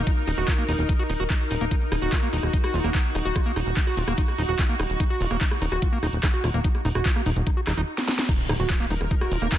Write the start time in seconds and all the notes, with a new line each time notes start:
Already playing: D#4 A#4
0.07 D#4, kick, closed hi-hat
0.17 closed hi-hat
0.27 D#1 D#4, open hi-hat
0.38 D#1 F#4, closed hi-hat
0.48 F4, kick, clap, closed hi-hat
0.58 A#3
0.69 D#1 D#4, open hi-hat
0.79 D#1, closed hi-hat
0.89 D#4, kick, closed hi-hat
0.99 F#4
1.10 D#1 D#4, open hi-hat
1.20 D#1 F#4, closed hi-hat
1.30 D#4, kick, clap, closed hi-hat
1.40 closed hi-hat
1.51 D#1 D#4, open hi-hat
1.61 D#1 A#3, closed hi-hat
1.71 D#4 F#4, kick, cross-stick, closed hi-hat
1.92 D#1 D#4, cross-stick, open hi-hat
2.02 D#1 F#4, closed hi-hat
2.12 F4, kick, cross-stick, clap, closed hi-hat
2.23 A#3
2.33 D#1 D#4, open hi-hat
2.43 D#1, cross-stick, closed hi-hat
2.53 D#4, kick, closed hi-hat
2.64 F#4, cross-stick
2.74 D#1 F4, open hi-hat
2.84 D#1 A#3, cross-stick, closed hi-hat
2.95 D#4, kick, clap, closed hi-hat
3.05 closed hi-hat
3.15 D#1 D#4, cross-stick, open hi-hat
3.25 D#1 F#4, closed hi-hat
3.36 F4, kick, cross-stick, closed hi-hat
3.46 A#3
3.56 D#1 D#4, cross-stick, open hi-hat
3.66 D#1, closed hi-hat
3.77 D#4, kick, clap, closed hi-hat
3.87 F#4, cross-stick
3.97 D#1 F4, open hi-hat
4.08 D#1 A#3, cross-stick, closed hi-hat
4.18 D#4, kick, closed hi-hat
4.28 cross-stick
4.38 D#1 D#4, open hi-hat
4.49 D#1 F#4, closed hi-hat
4.59 F4, kick, cross-stick, clap, closed hi-hat
4.69 A#3, closed hi-hat
4.79 D#1 D#4, cross-stick, open hi-hat
4.90 D#1, closed hi-hat
5.00 D#4, kick, cross-stick, closed hi-hat
5.10 F#4
5.21 D#1 F4, open hi-hat
5.31 D#1 A#3, cross-stick, closed hi-hat
5.41 D#4, kick, clap, closed hi-hat
5.51 cross-stick
5.62 D#1 D#4, open hi-hat
5.72 D#1 F#4, cross-stick, closed hi-hat
5.82 F4, kick, closed hi-hat
5.92 A#3
6.03 D#1 D#4, cross-stick, open hi-hat
6.13 D#1, closed hi-hat
6.23 D#4, kick, cross-stick, clap, closed hi-hat
6.34 F#4, closed hi-hat
6.44 D#1 F4, cross-stick, open hi-hat
6.54 D#1 A#3, closed hi-hat
6.64 D#4, kick, closed hi-hat
6.75 cross-stick, closed hi-hat
6.85 D#1 D#4, open hi-hat
6.95 D#1 F#4, cross-stick, closed hi-hat
7.05 F4, kick, clap, closed hi-hat
7.16 A#3, cross-stick
7.26 D#1 D#4, open hi-hat
7.36 D#1, closed hi-hat
7.47 D#4, kick, cross-stick, closed hi-hat
7.57 F#4, closed hi-hat
7.67 D#1 D#4, cross-stick, clap, open hi-hat
7.77 D#1 D#4, closed hi-hat
7.98 snare
8.08 snare
8.19 snare
8.29 D#4 A#4, kick, cross-stick, closed hi-hat, crash, impact
8.49 D#1 D#4, cross-stick, open hi-hat
8.60 D#1 F#4, closed hi-hat
8.70 F4, kick, cross-stick, clap, closed hi-hat
8.80 A#3, clap, closed hi-hat
8.90 D#1 D#4, open hi-hat
9.01 D#1, cross-stick, closed hi-hat
9.11 D#4, kick, closed hi-hat
9.21 F#4, cross-stick
9.32 D#1 F4, open hi-hat
9.42 D#1 A#3, cross-stick, closed hi-hat
9.52 D#4, kick, clap, closed hi-hat